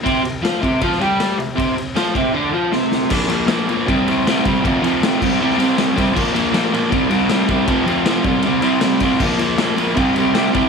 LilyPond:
<<
  \new Staff \with { instrumentName = "Overdriven electric guitar" } { \clef bass \time 4/4 \key c \mixolydian \tempo 4 = 157 <c c'>8 c8 <f f'>8 <c c'>8 <f f'>8 <g g'>4 c8 | <c c'>8 c8 <f f'>8 <c c'>8 <d d'>8 <f f'>8 <c c'>4 | <bes, f bes>8 <bes, f bes>8 <bes, f bes>8 <bes, f bes>8 <c g c'>8 <c g c'>8 <c g c'>8 <c g c'>8 | <f, c f>8 <f, c f>8 <f, c f>8 <c g c'>8 <c g c'>8 <c g c'>8 <c g c'>8 <c g c'>8 |
<bes, f bes>8 <bes, f bes>8 <bes, f bes>8 <bes, f bes>8 <c g c'>8 <c g c'>8 <c g c'>8 <c g c'>8 | <f, c f>8 <f, c f>8 <f, c f>8 <c g c'>8 <c g c'>8 <c g c'>8 <c g c'>8 <c g c'>8 | <bes, f bes>8 <bes, f bes>8 <bes, f bes>8 <bes, f bes>8 <c g c'>8 <c g c'>8 <c g c'>8 <c g c'>8 | }
  \new DrumStaff \with { instrumentName = "Drums" } \drummode { \time 4/4 <bd cymr>8 cymr8 <cymr sn>8 <bd cymr>8 <bd cymr>16 sn16 cymr8 <cymr sn>8 cymr8 | <bd cymr>8 cymr8 <cymr sn>8 <bd cymr>8 r4 sn8 sn8 | <cymc bd>8 cymr8 <cymr sn>8 cymr8 <bd cymr>8 cymr8 <cymr sn>8 <bd cymr sn>8 | <bd cymr>8 cymr8 <cymr sn>8 <cymc bd>8 r16 sn16 cymr8 <cymr sn>8 <bd cymr sn>8 |
<cymc bd>8 cymr8 <cymr sn>8 cymr8 <bd cymr>8 cymr8 <cymr sn>8 <bd cymr>8 | <bd cymr>8 cymr8 <cymr sn>8 <bd cymr>8 cymr8 cymr8 <cymr sn>8 <bd cymr sn>8 | <cymc bd>8 cymr8 <cymr sn>8 cymr8 <bd cymr>8 cymr8 <cymr sn>8 <bd cymr sn>8 | }
>>